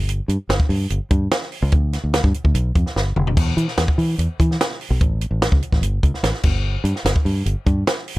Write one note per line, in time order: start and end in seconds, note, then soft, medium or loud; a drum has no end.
0.00 0.19 G1 medium
0.09 closed hi-hat loud
0.28 0.36 G2 medium
0.28 closed hi-hat medium
0.49 0.57 G1 loud
0.49 snare loud
0.49 closed hi-hat loud
0.60 kick loud
0.69 0.85 G2 loud
0.69 open hi-hat medium
0.90 0.98 G1 medium
0.90 closed hi-hat loud
1.11 1.27 G2 loud
1.11 kick medium
1.11 closed hi-hat medium
1.31 snare loud
1.31 closed hi-hat loud
1.42 snare soft
1.52 open hi-hat medium
1.62 1.70 C#2 loud
1.72 1.96 D2 loud
1.72 kick loud
1.72 closed hi-hat loud
1.93 snare soft
1.93 closed hi-hat medium
2.04 2.19 D2 medium
2.14 snare loud
2.14 closed hi-hat loud
2.24 2.32 G2 loud
2.24 kick medium
2.34 closed hi-hat medium
2.44 2.52 D2 medium
2.44 kick medium
2.54 2.70 B1 loud
2.54 closed hi-hat medium
2.75 2.83 F2 medium
2.75 kick medium
2.75 closed hi-hat medium
2.86 snare soft
2.96 3.14 G1 medium
2.96 snare medium
3.16 3.35 F1 medium
3.16 mid tom medium
3.27 floor tom medium
3.37 3.53 E2 medium
3.37 kick loud
3.37 splash medium
3.37 crash loud
3.57 3.65 E3 medium
3.57 closed hi-hat medium
3.68 snare soft
3.77 3.85 E2 loud
3.77 snare loud
3.77 closed hi-hat loud
3.88 kick loud
3.98 4.14 E3 medium
3.98 open hi-hat medium
4.18 4.26 E2 medium
4.18 closed hi-hat loud
4.40 4.55 E3 medium
4.40 kick medium
4.40 closed hi-hat medium
4.51 snare soft
4.61 snare loud
4.61 closed hi-hat loud
4.71 snare soft
4.81 open hi-hat medium
4.90 4.98 B1 loud
5.01 5.25 A1 loud
5.01 kick loud
5.01 closed hi-hat loud
5.21 closed hi-hat medium
5.31 5.47 A1 medium
5.42 snare loud
5.42 closed hi-hat loud
5.52 5.60 C#2 loud
5.52 kick medium
5.62 closed hi-hat medium
5.72 5.80 A1 medium
5.72 kick medium
5.72 snare soft
5.82 5.98 G1 medium
5.82 closed hi-hat loud
6.03 6.11 C#2 medium
6.03 kick medium
6.03 closed hi-hat medium
6.14 snare soft
6.23 6.31 A1 medium
6.23 snare loud
6.23 closed hi-hat loud
6.34 snare soft
6.43 6.76 G1 loud
6.43 kick loud
6.43 crash medium
6.84 6.92 G2 loud
6.84 closed hi-hat medium
6.96 snare soft
7.04 7.13 G1 loud
7.04 snare loud
7.04 closed hi-hat loud
7.16 kick medium
7.25 7.42 G2 medium
7.25 open hi-hat medium
7.46 7.54 G1 medium
7.46 closed hi-hat loud
7.66 7.83 G2 loud
7.66 kick medium
7.66 closed hi-hat medium
7.87 snare loud
7.87 closed hi-hat loud
8.08 open hi-hat medium